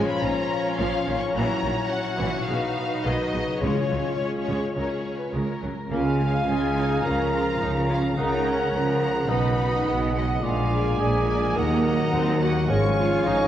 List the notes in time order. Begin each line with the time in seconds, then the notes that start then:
Already playing: G#2 F3 G#3 C#4 F4 C#5
0.03 A#2
0.08 F3 B5
0.12 F4
0.17 C#5
0.21 A#1 A#2 D#3 A#5
0.78 A#1 A#2 F3 F5
1.07 A#1 A#2 D#3
1.17 A#2 C#6
1.21 F#3
1.26 E4
1.31 F#4 C#5 A#5
1.35 A#1 A#2 E3 F#3 E4
1.63 A#1 A#2 D#3
1.91 F#5
2.19 A#1 A#2 E3
2.30 B2
2.35 F#3
2.39 D#4
2.44 B4 F5
2.48 B1 B2 C#3 D#4 B4
3.04 B1 B2 D#3 D#5
3.33 B1 B2 C#3
3.44 C#3
3.48 C#4
3.53 F4
3.57 G#3 C#4 F4 G#4
3.62 C#2 C#3 G#3 F4 G#4 C#5
3.90 C#2 C#3 F#3
4.17 G#4
4.47 C#2 C#3 G#3
4.76 C#2 C#3 F#3 A#4
4.89 G#4
5.17 B4
5.32 C#2 C#3 G#3 A#4
5.62 C#2 C#3 F#3
5.90 C#2 C#3 G#3 A#3 F4 F5 G#5
6.18 G#3 F5 G#5
6.47 C#2 C#3 G#3 F4 G#4 G#5
6.75 D#4 G#4 F5 G#5
7.03 C#2 C#3 F3 C#4 A#4 F5 A#5
7.32 F4 A#4 F5 A#5
7.60 C#2 C#3 A#3 D#4
7.89 C#4 F4 F5 A#5
8.17 C#2 C#3 C#4 D#4 A#4 F#5 A#5
8.44 C#4 F#5 A#5
8.73 C#2 C#3 F3 A#3 A#4 A#5
9.00 A#4 F#5 A#5
9.28 B1 B2 D#4 B4 D#5 F#5 B5
9.58 D#5 F#5
9.86 B1 B2 F#3 B3
10.15 G#3 F#4 D#5 F#5
10.41 A#1 A#2 G#3 A#3 D4 F4 D5 F5 G#5
10.70 G#4 D5 G#5
10.99 A#1 A#2 F3 G#4 G#5
11.27 G#4 D5 G#5
11.55 D#2 D#3 F#3 D#4 A#4 D#5 F#5 A#5
11.84 D#5 F#5
12.12 D#2 A#3 C4
12.38 A#3 F#4 A#4 D#5 F#5
12.67 G#1 G#2 F3 G#3 C#4 C#5 F5 G#5 C#6
12.96 F4 F5 G#5
13.24 G#1 G#2 F3 D#4 C#5 C#6